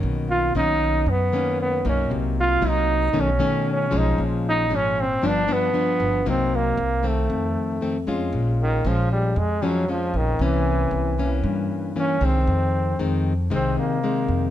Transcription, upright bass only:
X:1
M:4/4
L:1/8
Q:1/4=116
K:Bbm
V:1 name="Upright bass" clef=bass
=B,,,2 B,,,2 ^F,, z2 B,,, | C,,2 C,,2 =B,,, z2 B,,, | B,,,2 A,,,2 =G,,, z2 G,,, | C,,2 C,,2 F,, z2 F,, |
B,,,2 B,,,2 F,, z2 B,,, | C,,2 C,,2 =G,, z2 C,, | F,,2 F,,2 C,, z2 F,, |]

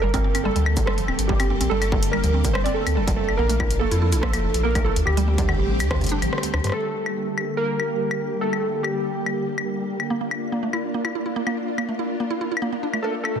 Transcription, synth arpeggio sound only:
X:1
M:4/4
L:1/16
Q:1/4=143
K:Gm
V:1 name="Synth arpeggio sound"
G, C C C G, G, z2 G, F, C z G, C C C | G, G, z2 G, F, C z G, C C C G, G, z2 | B, A, =E z B, E E E B, B, z2 B, A, E z | D, G, G, G, D, D, z2 D, C, D F, D, D,, D D, |
z16 | z16 | B, B, z2 B, A, =E z B, E E E B, B, z2 | B, A, =E z B, E E E B, B, D A, B z2 B,, |]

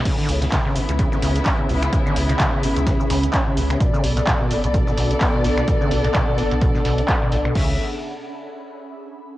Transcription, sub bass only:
X:1
M:4/4
L:1/16
Q:"Swing 16ths" 1/4=128
K:C#phr
V:1 name="Sub bass" clef=bass
z2 C,, z3 G,,, C,, z2 C,, z3 C,, z | z2 C,, z3 G,,, C,, z2 C,, z3 C,, z | z2 B,,, z3 F,,, B,,, z2 B,,, z3 B,,, z | z2 B,,, z3 F,,, B,,, z2 B,,, z3 B,,, z |
C,,2 z12 z2 |]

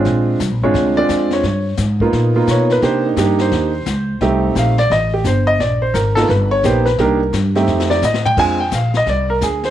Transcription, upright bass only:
X:1
M:4/4
L:1/8
Q:"Swing" 1/4=173
K:Bbmix
V:1 name="Upright bass" clef=bass
B,,,2 (3C,, B,,, A,,, D,,2 F,,2 | G,,2 A,,2 ^A,,2 =B,,2 | C,2 G,,2 E,,2 _D,,2 | C,,2 B,,,2 =A,,,2 G,,,2 |
B,,,2 A,,,2 G,,,2 B,,,2 | C,,2 G,,2 F,,2 =A,,2 | F,,2 B,,,2 C,,2 D,,2 |]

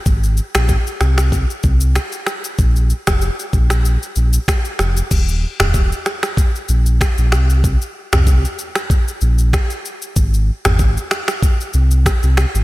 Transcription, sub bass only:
X:1
M:4/4
L:1/16
Q:"Swing 16ths" 1/4=95
K:Bbmix
V:1 name="Sub bass" clef=bass
A,,,3 B,,,2 z C,,4 C,,3 z3 | B,,,3 F,,,2 z B,,,4 B,,,2 z2 F,,,2 | E,,,3 E,,,3 z4 B,,,3 B,,, C,,2- | C,,2 z C,,3 z4 B,,,3 z3 |
A,,,3 A,,,3 z4 C,,3 C,,2 A,,, |]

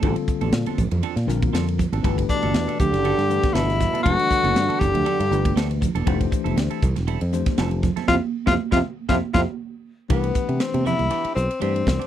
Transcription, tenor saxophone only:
X:1
M:4/4
L:1/16
Q:"Swing 16ths" 1/4=119
K:F
V:1 name="Tenor saxophone"
z16 | z2 D4 G6 E4 | ^F6 G8 z2 | z16 |
F z2 F z F z2 F z F z4 z | [K:C] B,4 C2 E4 C2 C4 |]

